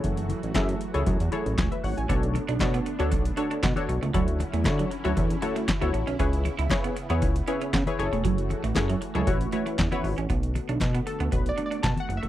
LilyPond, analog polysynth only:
\new Staff \with { instrumentName = "Analog polysynth" } { \time 4/4 \key b \dorian \tempo 4 = 117 << { r2. <gis' cis''>16 <b' e''>16 <cis'' fis''>16 <cis'' gis''>16~ | <cis'' gis''>16 r2. r8. | r1 | r1 |
r1 | r4. a'8 \tuplet 3/2 { b'8 d''8 d''8 a''8 fis''8 e''8 } | } \\ { <e' gis' a' cis''>8. r16 <e' gis' a' e''>8 r16 <e' gis' a' cis''>8 r16 <e' gis' a' cis''>8 r4 | <d' fis' a' cis''>8. r16 <d' fis' a' cis''>8 r16 <d' fis' a' cis''>8 r16 <d' fis' a' cis''>8 r16 <d' fis' a' cis''>8 r16 | <e' fis' a' cis''>8. r16 <e' fis' a' cis''>8 r16 <e' fis' a' cis''>8 r16 <e' fis' a' cis''>8 r16 <e' fis' a' cis''>8 r16 | <e' gis' b' cis''>8. r16 <e' gis' b' cis''>8 r16 <e' gis' b' cis''>8 r16 <e' gis' b' cis''>8 r16 <e' gis' b' cis''>16 <e' gis' a' cis''>8~ |
<e' gis' a' cis''>8. r16 <e' gis' a' cis''>8 r16 <e' gis' a' cis''>16 <e' fis' b' cis''>8 <e' fis' b' cis''>8 r16 <e' fis' b' cis''>8 r16 | r1 | } >> }